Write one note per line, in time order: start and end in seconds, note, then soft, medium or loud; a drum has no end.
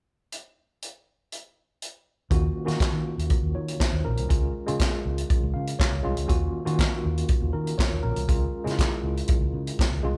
0.32 closed hi-hat medium
0.82 closed hi-hat medium
1.32 closed hi-hat medium
1.82 closed hi-hat medium
2.30 2.48 D#2 medium
2.30 2.56 D#3 medium
2.30 2.57 A#3 medium
2.30 2.57 C#4 medium
2.30 2.57 F4 medium
2.30 2.57 F#4 medium
2.30 kick loud
2.30 closed hi-hat medium
2.65 3.35 D#3 medium
2.65 2.77 D#3 medium
2.65 3.35 A#3 medium
2.65 3.35 C#4 medium
2.65 3.36 F4 medium
2.65 3.36 F#4 medium
2.65 closed hi-hat soft
2.69 snare soft
2.80 muted fingered electric bass stroke soft
2.80 kick loud
2.80 snare loud
2.80 clap medium
2.80 closed hi-hat medium
2.93 3.02 D#3 medium
3.18 3.27 D#2 medium
3.18 closed hi-hat soft
3.30 kick loud
3.30 closed hi-hat medium
3.43 3.52 D#2 medium
3.55 3.73 D#3 medium
3.55 3.79 F4 soft
3.55 3.79 C#5 medium
3.68 closed hi-hat soft
3.80 4.04 D#4 medium
3.80 4.04 C5 medium
3.80 kick medium
3.80 snare loud
3.80 clap medium
3.80 closed hi-hat medium
3.93 4.01 D#2 medium
4.05 4.15 A#1 medium
4.05 4.28 C#4 medium
4.05 4.52 A#4 medium
4.17 4.27 C2 medium
4.17 closed hi-hat soft
4.29 4.48 C#2 medium
4.29 4.55 G#3 medium
4.29 4.55 C#4 medium
4.29 4.56 F4 medium
4.29 kick medium
4.29 closed hi-hat medium
4.67 4.86 C#3 medium
4.67 5.35 G#3 medium
4.67 5.36 C#4 medium
4.67 5.36 F4 medium
4.67 closed hi-hat soft
4.79 kick loud
4.79 snare loud
4.79 clap medium
4.79 closed hi-hat medium
5.05 5.23 C#2 medium
5.18 closed hi-hat soft
5.30 kick loud
5.30 closed hi-hat medium
5.43 5.52 C#2 medium
5.54 5.73 C#3 medium
5.54 5.78 F5 medium
5.67 closed hi-hat medium
5.79 6.26 C#5 medium
5.79 kick loud
5.79 snare loud
5.79 clap medium
5.79 closed hi-hat medium
5.93 6.01 C#2 medium
6.03 6.14 C2 loud
6.03 6.21 G#3 medium
6.03 6.21 C#4 medium
6.03 6.22 F4 loud
6.17 6.26 C#2 medium
6.17 closed hi-hat soft
6.27 6.47 D#2 medium
6.27 6.54 D#3 medium
6.27 6.54 A#3 medium
6.27 6.55 C#4 medium
6.27 6.55 F4 medium
6.27 6.55 F#4 medium
6.27 kick medium
6.27 closed hi-hat medium
6.65 7.34 D#3 medium
6.65 6.84 D#3 medium
6.65 7.34 A#3 medium
6.65 7.34 C#4 medium
6.65 7.35 F4 medium
6.65 7.35 F#4 medium
6.65 closed hi-hat soft
6.79 kick loud
6.79 snare loud
6.79 clap medium
6.79 closed hi-hat medium
7.05 7.22 D#2 medium
7.17 closed hi-hat soft
7.28 kick loud
7.28 closed hi-hat medium
7.42 7.50 D#2 loud
7.53 7.71 D#3 medium
7.53 7.78 C#4 soft
7.53 7.77 A#4 medium
7.67 closed hi-hat soft
7.78 8.02 F4 medium
7.78 8.02 C#5 medium
7.78 kick loud
7.78 snare loud
7.78 clap medium
7.78 closed hi-hat medium
7.92 8.00 D#2 medium
8.03 8.12 A#1 medium
8.03 8.27 C#4 medium
8.03 8.51 A#4 medium
8.16 8.25 C2 medium
8.16 closed hi-hat soft
8.28 8.46 C#2 medium
8.28 8.54 G#3 medium
8.28 8.54 C#4 medium
8.28 8.55 F4 medium
8.28 kick loud
8.28 closed hi-hat medium
8.64 8.83 C#3 medium
8.64 9.33 G#3 medium
8.64 9.34 C#4 medium
8.64 8.72 E4 medium
8.64 closed hi-hat soft
8.68 9.37 F4 medium
8.68 snare soft
8.79 kick loud
8.79 snare loud
8.79 clap medium
8.79 closed hi-hat medium
9.03 9.21 C#2 medium
9.17 closed hi-hat soft
9.28 kick loud
9.28 closed hi-hat medium
9.41 9.50 C#2 loud
9.54 9.71 C#3 medium
9.67 closed hi-hat medium
9.79 kick loud
9.79 snare loud
9.79 clap medium
9.79 closed hi-hat medium
9.92 10.00 C#2 medium
10.03 10.12 C2 loud
10.03 10.17 G#3 medium
10.03 10.17 C#4 medium
10.03 10.17 F4 medium